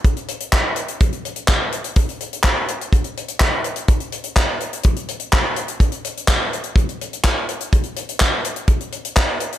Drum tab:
HH |xxxxx-xxxxxxx-xx|xxxxx-xxxxxxx-xx|xxxxx-xxxxxxx-xx|xxxxx-xxxxxxx-xx|
CP |----x-------x---|----x-------x---|----x-------x---|----x-------x---|
BD |o---o---o---o---|o---o---o---o---|o---o---o---o---|o---o---o---o---|

HH |xxxxx-xxxxxxx-xx|
CP |----x-------x---|
BD |o---o---o---o---|